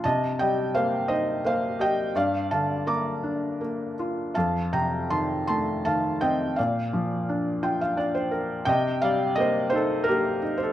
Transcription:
<<
  \new Staff \with { instrumentName = "Felt piano" } { \time 3/4 \key c \dorian \tempo 4 = 84 << { <ees'' a''>8 <ees'' g''>8 <c'' f''>8 <c'' ees''>8 <c'' f''>8 <ees'' g''>8 | <d'' f''>8 <f'' a''>8 <bes'' d'''>4. r8 | <f'' a''>8 <g'' bes''>8 <a'' c'''>8 <a'' c'''>8 <f'' a''>8 <ees'' g''>8 | <d'' f''>2 r4 |
<ees'' g''>8 <d'' f''>8 <c'' ees''>8 <a' c''>8 <g' bes'>8. <a' c''>16 | } \\ { r2. | r2. | r2. | r4. g''16 f''16 d''16 c''8. |
r2. | } >> }
  \new Staff \with { instrumentName = "Felt piano" } { \time 3/4 \key c \dorian c8 g8 bes8 ees'8 bes8 g'8 | g,8 d8 bes8 d'8 bes8 f'8 | f,8 c8 ees8 a8 ees8 c'8 | bes,8 f8 d'8 f'8 d'8 bes'8 |
c8 g8 bes8 ees'8 bes8 ees'8 | }
>>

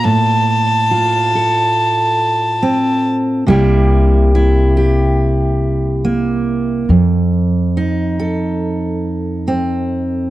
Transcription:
<<
  \new Staff \with { instrumentName = "Violin" } { \time 4/4 \key f \mixolydian \tempo 4 = 70 a''2.~ a''8 r8 | r1 | r1 | }
  \new Staff \with { instrumentName = "Steel-string acoustic guitar" } { \time 4/4 \key f \mixolydian << { r4 f'8 a'4. c'4 | <g bes e' g'>4 e'8 g'4. bes4 | r4 ees'8 a'4. c'4 | } \\ { a,1 | c1 | f,1 | } >> }
  \new Staff \with { instrumentName = "Upright bass" } { \clef bass \time 4/4 \key f \mixolydian r1 | c,1 | f,1 | }
>>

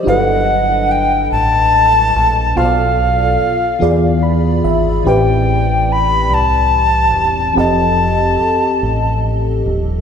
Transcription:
<<
  \new Staff \with { instrumentName = "Recorder" } { \time 6/8 \key g \major \tempo 4. = 48 fis''4 g''8 a''4. | f''2 r4 | g''4 b''8 a''4. | a''2 r4 | }
  \new Staff \with { instrumentName = "FM electric piano" } { \time 6/8 \key g \major << { ees''16 r2 r8. | r2 b''8 e''8 | r2. | r2. | } \\ { <fis g d' e' a' b'>2. | <b, b f' a' c'' d''>4. <e b f' gis' d''>4. | <a, e c' g' b' d''>2. | <f c' g' a' ees''>2. | } >> }
  \new Staff \with { instrumentName = "Fingered electric bass" } { \clef bass \time 6/8 \key g \major g,,4. a,,4 bes,,8 | b,,4 r8 e,4 gis,,8 | a,,4. c,4 e,,8 | f,,4 r8 a,,4 ees,,8 | }
>>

